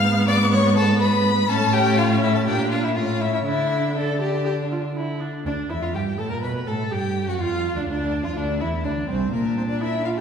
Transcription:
0.00 1.45 G#2 medium
0.00 1.45 B3 loud
0.00 0.26 F5 loud
0.00 0.26 F6 loud
0.28 0.36 D5 loud
0.28 0.51 D6 loud
0.52 0.76 C#5 medium
0.52 0.76 C#6 loud
0.76 1.00 A4 loud
0.76 0.84 A5 loud
1.00 1.48 B4 loud
1.00 1.51 B5 loud
1.49 2.48 A2 medium
1.49 2.49 C#4 medium
1.49 1.75 A4 medium
1.49 1.75 A5 loud
1.73 1.99 G4 loud
1.73 1.99 G5 loud
1.98 2.22 F4 medium
1.98 2.21 F5 loud
2.22 2.35 E4 medium
2.22 2.34 E5 loud
2.34 2.45 A4 medium
2.34 2.40 A5 loud
2.46 2.98 A#2 medium
2.46 2.96 D4 medium
2.46 2.70 G4 medium
2.46 2.71 G5 loud
2.70 2.85 F4 medium
2.70 2.83 F5 medium
2.84 2.98 E4 medium
2.84 2.89 E5 medium
2.96 3.45 A2 medium
2.96 3.48 C#4 medium
2.96 3.22 F4 medium
2.96 3.23 F5 medium
3.21 3.32 E4 medium
3.21 3.34 E5 medium
3.33 3.38 E4 medium
3.33 3.39 E5 medium
3.45 5.22 D3 medium
3.45 3.96 D4 medium
3.45 3.95 E4 medium
3.45 3.98 E5 medium
3.96 4.94 D4 medium
3.96 4.20 A4 medium
3.96 4.96 D5 medium
4.21 4.45 G4 medium
4.45 4.53 G4 medium
4.71 4.79 F4 medium
4.96 5.22 E4 medium
5.20 5.45 D4 medium
5.46 5.54 D2 medium
5.46 5.71 D4 medium
5.46 5.54 D4 medium
5.46 5.54 D5 medium
5.70 5.82 E2 medium
5.70 5.81 E4 medium
5.70 5.75 E4 medium
5.70 5.85 E5 medium
5.82 5.96 F2 medium
5.82 5.95 F4 medium
5.82 5.87 F4 medium
5.82 5.96 F5 medium
5.93 6.18 G2 medium
5.93 6.20 G4 medium
5.93 6.02 G4 medium
5.93 6.20 G5 medium
6.18 6.32 A2 medium
6.18 6.30 A4 medium
6.18 6.34 A5 medium
6.31 6.44 A#2 medium
6.31 6.42 A#4 medium
6.31 6.36 A#4 medium
6.31 6.43 A#5 medium
6.42 6.67 B2 medium
6.42 6.69 B4 medium
6.42 6.52 B4 medium
6.42 6.51 B5 medium
6.67 6.91 A2 medium
6.67 6.93 A4 medium
6.67 6.94 A4 medium
6.67 6.75 A5 medium
6.92 7.29 G2 medium
6.92 7.30 G4 medium
6.92 7.27 G5 medium
7.28 7.41 F#2 medium
7.28 7.39 F#4 medium
7.28 7.42 F#4 medium
7.28 7.33 F#5 medium
7.39 7.77 F2 medium
7.39 7.75 F4 medium
7.39 7.78 F4 medium
7.39 7.75 F5 medium
7.76 7.87 D2 medium
7.76 7.88 D4 medium
7.76 7.81 D5 medium
7.87 8.25 D2 medium
7.87 8.26 D4 medium
7.87 8.23 D5 medium
8.24 8.35 F2 medium
8.24 8.38 F4 medium
8.24 8.36 F4 medium
8.24 8.35 F5 medium
8.36 8.62 D2 medium
8.36 8.60 D4 medium
8.36 8.62 D4 medium
8.36 8.59 D5 medium
8.60 8.86 E2 medium
8.60 8.86 E4 medium
8.60 8.69 E4 medium
8.60 8.68 E5 medium
8.84 9.08 D2 medium
8.84 9.08 D4 medium
8.84 8.92 D5 medium
9.08 9.32 C2 medium
9.08 9.16 C4 medium
9.08 9.32 C4 medium
9.08 9.32 C5 medium
9.33 10.21 A#2 medium
9.33 9.41 A#3 medium
9.33 10.21 D4 medium
9.33 9.57 A#4 medium
9.57 9.62 C4 medium
9.57 9.62 C5 medium
9.69 9.83 D4 medium
9.69 9.81 D5 medium
9.81 10.06 E4 medium
9.81 10.04 E5 medium
10.05 10.19 F4 medium
10.05 10.10 F5 medium
10.17 10.21 G4 medium

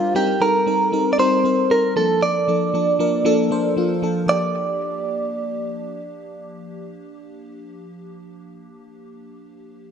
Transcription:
0.00 0.15 G3 loud
0.00 0.17 D4 loud
0.00 0.15 F4 medium
0.00 0.17 F4 medium
0.00 0.17 G4 medium
0.00 0.17 A4 medium
0.00 0.16 A#4 loud
0.00 0.17 C5 medium
0.15 0.33 G3 medium
0.15 0.33 C4 medium
0.15 0.34 D#4 medium
0.15 0.42 G4 medium
0.15 0.34 A#4 medium
0.40 0.59 G3 medium
0.40 0.59 C4 medium
0.40 0.59 D#4 medium
0.40 0.60 A4 medium
0.40 1.12 A#4 medium
0.66 0.85 G3 medium
0.66 0.85 C4 medium
0.66 0.85 D#4 medium
0.66 0.85 A#4 medium
0.92 1.11 G3 medium
0.92 1.11 C4 medium
0.92 1.11 D#4 medium
0.92 1.11 A#4 medium
1.13 1.19 D5 medium
1.18 1.37 G3 medium
1.18 1.37 C4 medium
1.18 1.37 D#4 medium
1.18 1.37 A#4 medium
1.18 1.72 C5 medium
1.44 1.63 G3 medium
1.44 1.63 C4 medium
1.44 1.63 D#4 medium
1.44 1.63 A#4 medium
1.70 1.88 G3 medium
1.70 1.89 C4 medium
1.70 1.89 D#4 medium
1.70 1.89 A#4 medium
1.70 1.96 A#4 medium
1.96 2.39 F3 medium
1.96 2.39 A#3 medium
1.96 2.39 D4 medium
1.96 2.21 A4 medium
1.96 2.39 A4 medium
2.23 3.73 D5 medium
2.48 2.66 F3 medium
2.48 2.66 A#3 medium
2.48 2.66 D4 medium
2.48 2.67 A4 medium
2.74 2.92 F3 medium
2.74 2.92 A#3 medium
2.74 2.92 D4 medium
2.74 2.93 A4 medium
2.99 3.18 F3 medium
2.99 3.18 A#3 medium
2.99 3.18 D4 medium
2.99 3.18 A#4 medium
3.25 3.43 F3 loud
3.25 3.44 A#3 medium
3.25 3.44 D4 medium
3.25 3.44 A4 loud
3.51 3.69 F3 medium
3.51 3.69 A#3 medium
3.51 3.70 D4 medium
3.51 3.70 C5 medium
3.76 3.95 F3 medium
3.76 3.95 A#3 medium
3.76 3.96 D4 medium
3.76 3.96 F4 medium
4.02 4.21 F3 medium
4.02 4.21 A#3 medium
4.02 4.21 D4 medium
4.02 4.22 A4 medium
4.26 7.48 F3 medium
4.26 7.50 A#3 medium
4.26 7.51 D4 medium
4.26 7.51 D5 medium
4.31 7.53 G4 medium

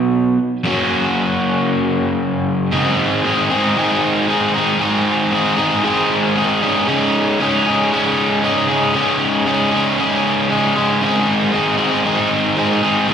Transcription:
0.00 0.37 B2 medium
0.00 0.38 F#3 medium
0.00 0.38 B3 medium
0.00 0.38 D#4 medium
0.00 0.39 F#4 medium
0.64 2.71 F#2 medium
0.64 2.72 C#3 medium
0.64 2.72 F#3 medium
0.64 2.72 A#3 medium
0.64 2.73 C#4 medium
0.64 2.73 F#4 medium
2.72 3.76 G#2 loud
2.72 3.51 D#3 loud
2.72 3.24 G#3 medium
2.72 3.24 C4 loud
2.72 3.26 D#4 medium
2.72 3.26 G#4 loud
3.24 3.52 G#3 medium
3.24 3.50 C4 medium
3.24 3.50 D#4 medium
3.24 3.49 G#4 medium
3.49 3.77 G#3 medium
3.49 3.76 C4 medium
3.49 3.78 D#4 medium
3.49 3.78 G#4 medium
3.76 4.54 G#2 medium
3.76 4.55 D#3 loud
3.76 4.27 G#3 loud
3.76 4.28 C4 loud
3.76 4.29 D#4 loud
3.76 4.30 G#4 loud
4.27 4.56 G#3 medium
4.27 4.54 C4 medium
4.27 4.54 D#4 medium
4.27 4.53 G#4 medium
4.54 4.79 G#3 medium
4.54 4.79 C4 medium
4.54 4.80 D#4 medium
4.54 4.81 G#4 medium
4.79 5.57 G#2 loud
4.79 5.58 D#3 loud
4.79 5.31 G#3 loud
4.79 5.31 C4 loud
4.79 5.33 D#4 loud
4.79 5.34 G#4 loud
5.31 5.59 G#3 medium
5.31 5.57 C4 medium
5.31 5.57 D#4 medium
5.31 5.56 G#4 medium
5.57 5.84 G#3 medium
5.57 5.83 C4 medium
5.57 5.84 D#4 medium
5.57 5.85 G#4 medium
5.82 6.59 G#2 loud
5.82 6.60 D#3 medium
5.82 6.35 G#3 loud
5.82 6.35 C4 loud
5.82 6.37 D#4 medium
5.82 6.38 G#4 loud
6.35 6.63 G#3 medium
6.35 6.60 C4 medium
6.35 6.62 D#4 medium
6.35 6.61 G#4 medium
6.62 6.87 C#3 medium
6.62 6.87 G#3 medium
6.62 6.88 C#4 medium
6.62 6.89 D#4 medium
6.62 6.89 G#4 medium
6.87 7.71 C#3 medium
6.87 7.39 G#3 medium
6.87 7.40 C#4 medium
6.87 7.41 D#4 loud
6.87 7.42 G#4 loud
7.40 7.92 G#3 medium
7.40 7.68 C#4 medium
7.40 7.67 D#4 medium
7.40 7.66 G#4 medium
7.66 7.92 C#4 medium
7.66 7.93 D#4 medium
7.66 7.94 G#4 medium
7.92 8.69 C#3 medium
7.92 8.42 G#3 medium
7.92 8.43 C#4 loud
7.92 8.44 D#4 loud
7.92 8.45 G#4 loud
8.42 8.94 G#3 medium
8.42 8.70 C#4 medium
8.42 8.69 D#4 medium
8.42 8.68 G#4 medium
8.68 8.95 C#4 medium
8.68 8.96 D#4 medium
8.68 8.96 G#4 medium
8.94 9.72 C#3 loud
8.94 9.46 G#3 medium
8.94 9.46 C#4 medium
8.94 9.47 D#4 loud
8.94 9.48 G#4 loud
9.46 9.99 G#3 medium
9.46 9.73 C#4 medium
9.46 9.73 D#4 medium
9.46 9.71 G#4 medium
9.72 9.98 C#4 medium
9.72 10.00 D#4 medium
9.72 10.00 G#4 medium
9.98 10.76 C#3 medium
9.98 10.49 G#3 medium
9.98 10.49 C#4 loud
9.98 10.51 D#4 loud
9.98 10.52 G#4 loud
10.50 11.02 G#3 medium
10.50 10.77 C#4 medium
10.50 10.77 D#4 medium
10.50 10.75 G#4 medium
10.75 11.01 C#4 medium
10.75 11.03 D#4 medium
10.75 11.03 G#4 medium
11.01 12.04 G#2 medium
11.01 11.80 D#3 loud
11.01 11.52 G#3 medium
11.01 11.53 C4 loud
11.01 11.54 D#4 medium
11.01 11.55 G#4 loud
11.52 11.80 G#3 medium
11.52 11.78 C4 medium
11.52 11.78 D#4 medium
11.52 11.77 G#4 medium
11.77 12.05 G#3 medium
11.77 12.05 C4 medium
11.77 12.06 D#4 medium
11.77 12.06 G#4 medium
12.04 12.83 G#2 medium
12.04 12.83 D#3 medium
12.04 12.56 G#3 loud
12.04 12.56 C4 loud
12.04 12.58 D#4 loud
12.04 12.58 G#4 loud
12.56 12.85 G#3 medium
12.56 12.83 C4 medium
12.56 12.83 D#4 medium
12.56 12.82 G#4 medium
12.82 13.09 G#3 medium
12.82 13.09 C4 medium
12.82 13.10 D#4 medium
12.82 13.11 G#4 medium
13.08 13.14 G#2 medium
13.08 13.14 D#3 medium
13.08 13.14 G#3 loud
13.08 13.14 C4 loud
13.08 13.14 D#4 loud

